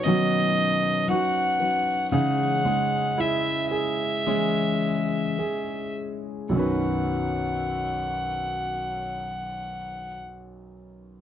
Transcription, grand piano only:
Already playing: B2 F#3 D#4 F#4
0.08 F#3
1.10 F#4
2.12 C#3
2.65 G#3
3.18 E4
3.71 G#4
4.27 G#3
5.39 G#4
6.49 B1 F#2 D#3
6.55 C#4 F#4 B4

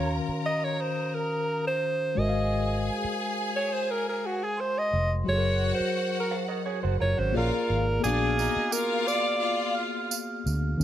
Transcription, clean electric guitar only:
6.31 C5 F5
6.48 A#4 D#5
6.66 G#4 C#5
6.83 F#4 C5
7.00 F4 A#4
7.17 C#4 F#4

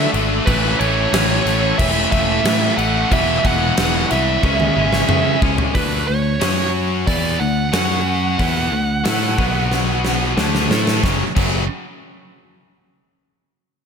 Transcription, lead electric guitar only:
0.46 B4
0.79 C#5
1.78 E5
2.12 E5
2.77 F#5
3.13 E5
3.39 E5
3.46 F#5
4.12 E5
5.75 B4
6.08 C#5
7.07 D5
7.40 F#5

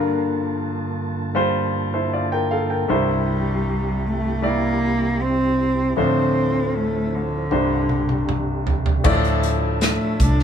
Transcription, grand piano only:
Already playing: G2 D3 G3 F4 A#4
1.35 G3 F4 C5
1.94 E4 C5
2.13 F4 D5
2.32 A#4 G5
2.51 A4 F5
2.70 A#4 G5
2.88 C2 G2 G3 E4 C5
4.42 G3 E4 D5
5.97 D2 A2 F3 D4 C5
7.51 C2 G2 G3 D4 C5
9.04 A2 F3 E4 D5

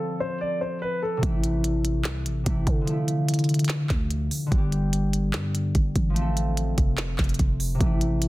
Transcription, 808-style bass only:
1.23 A1
2.05 C2
2.26 A1
2.46 A1
2.67 D3
3.90 D2
4.52 G1
5.34 G2
5.75 G1
5.96 A1
6.78 F1
7.19 F1
7.39 F1
7.81 A1

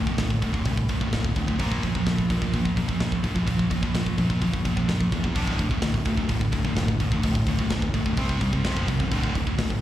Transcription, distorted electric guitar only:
0.07 D2 A2
0.18 D2 A2
0.42 D2 A2
0.53 D2 A2
0.66 D2 A2
0.89 D2 A2
1.01 D2 A2
1.13 D2 A2
1.37 D2 A2
1.48 D2 A2
1.60 A#2 F3 A#3
1.84 A#2 F3
1.95 A#2 F3
2.07 A#2 F3
2.30 A#2 F3
2.42 A#2 F3
2.53 A#2 F3
2.77 A#2 F3
2.88 A#2 F3
3.00 A#2 F3
3.23 A#2 F3
3.35 A#2 F3
3.47 A#2 F3
3.70 A#2 F3
3.83 A#2 F3
3.94 A#2 F3
4.18 A#2 F3
4.30 A#2 F3
4.41 A#2 F3
4.65 A#2 F3
4.76 A#2 F3
4.88 A#2 F3
5.12 A#2 F3
5.24 A#2 F3
5.35 D2 A2 D3
5.59 D2 A2
5.71 D2 A2
5.82 D2 A2
6.05 D2 A2
6.17 D2 A2
6.29 D2 A2
6.52 D2 A2
6.65 D2 A2
6.76 D2 A2
7.00 D2 A2
7.12 D2 A2
7.24 D2 A2
7.48 D2 A2
7.59 D2 A2
7.71 D2 A2
7.94 D2 A2
8.06 D2 A2
8.17 C3 G3 C4
8.41 C3 G3
8.53 C3 G3
8.64 F2 C3 F3
8.88 F2 C3
8.99 F2 C3
9.12 D2 A2 D3
9.35 D2 A2
9.47 D2 A2
9.58 D2 A2

